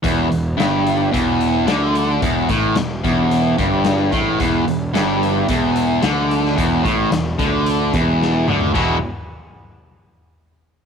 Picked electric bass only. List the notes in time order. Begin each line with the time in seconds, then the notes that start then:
0.05 E1
0.32 E1
0.58 G1
1.14 E1
1.66 D2
2.22 E1
2.49 A1
2.77 E1
3.04 E1
3.59 G1
4.13 A1
4.40 E1
4.68 E1
4.94 G1
5.49 E1
6.03 D2
6.58 E1
6.85 A1
7.12 E1
7.39 D2
7.94 E1
8.47 D2
8.76 E1